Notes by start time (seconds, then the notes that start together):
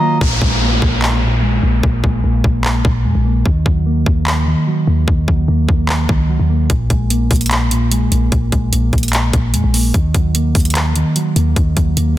Already playing: D#3 F#3 F4 D#5 A#5
0.01 A#3
0.21 A#1 A#2, kick, downlifter
0.41 A#1 G#3, kick
0.61 A#3
0.82 A#1, kick
1.02 clap
1.23 A#2
1.42 G#3
1.63 A#1 A#3
1.83 A#1 A#2, kick
2.04 A#1 G#3, kick
2.24 A#1 A#3
2.44 A#1, kick
2.65 clap
2.85 A#1 A#2, kick
3.05 F2 G#3
3.15 A#1
3.25 A#3
3.46 D#2 D#3, kick
3.66 D#2 F#3, kick
3.86 A#3
4.06 D#2, kick
4.27 clap
4.47 D#3
4.67 F#3
4.87 D#2 A#3
5.08 D#2, kick
5.28 D#2 F#3, kick
5.48 D#2 A#3
5.69 D#2, kick
5.89 clap
6.09 C#2 D#3, kick
6.29 F#3
6.39 D#2
6.49 A#3
6.70 A#1 A#2, kick, closed hi-hat
6.90 A#1 G#3, kick, closed hi-hat
7.10 A#3, closed hi-hat
7.31 A#1, kick, closed hi-hat, open hi-hat
7.36 closed hi-hat
7.41 closed hi-hat
7.46 closed hi-hat
7.51 clap, closed hi-hat
7.71 A#2, closed hi-hat
7.91 G#3, closed hi-hat
8.12 A#1 A#3, closed hi-hat
8.32 A#1 A#2, kick, closed hi-hat
8.52 A#1 G#3, kick, closed hi-hat
8.73 A#1 A#3, closed hi-hat
8.93 A#1, kick, closed hi-hat
8.98 closed hi-hat
9.03 closed hi-hat
9.08 closed hi-hat
9.13 clap, closed hi-hat
9.33 A#1 A#2, kick, closed hi-hat
9.54 F2 G#3, closed hi-hat
9.64 A#1
9.74 A#3, open hi-hat
9.94 D#2 D#3, kick, closed hi-hat
10.14 D#2 F#3, kick, closed hi-hat
10.35 A#3, closed hi-hat
10.55 D#2, kick, closed hi-hat, open hi-hat
10.60 closed hi-hat
10.65 closed hi-hat
10.70 closed hi-hat
10.75 clap, closed hi-hat
10.96 D#3, closed hi-hat
11.16 F#3, closed hi-hat
11.36 D#2 A#3, closed hi-hat
11.56 D#2 D#3, kick, closed hi-hat
11.77 D#2 F#3, kick, closed hi-hat
11.97 D#2 A#3, closed hi-hat